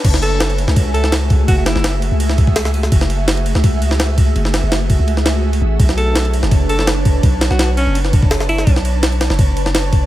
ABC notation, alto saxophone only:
X:1
M:4/4
L:1/16
Q:1/4=167
K:F#m
V:1 name="Alto saxophone"
z2 A4 z4 A2 z4 | F F E3 z8 z3 | z16 | z16 |
z2 A4 z4 A2 z4 | z3 F2 z C2 z6 E2- | E z12 z3 |]